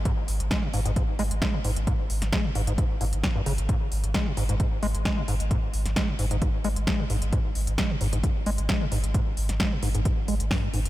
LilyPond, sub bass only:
\new Staff \with { instrumentName = "Sub bass" } { \clef bass \time 4/4 \key gis \minor \tempo 4 = 132 r8 gis,,16 gis,,16 r8 gis,,16 gis,,16 r8 gis,,16 gis,,16 r8 gis,,16 gis,,16 | r8 gis,,16 gis,,16 r8 gis,,16 gis,,16 r8 gis,,16 gis,,16 r8 gis,,16 gis,,16 | r8 gis,,16 gis,,16 r8 gis,,16 gis,,16 r8 gis,,16 gis,,16 r8 gis,,16 gis,,16 | r8 gis,,16 gis,,16 r8 gis,,16 gis,,16 r8 gis,,16 gis,,16 r8 gis,,16 gis,,16 |
r8 gis,,16 gis,,16 r8 gis,,16 gis,,16 r8 gis,,16 gis,,16 r8 gis,,16 gis,,16 | r8 gis,,16 gis,,16 r8 gis,,16 gis,,16 r8 gis,,16 gis,,16 r8 gis,,16 gis,,16 | }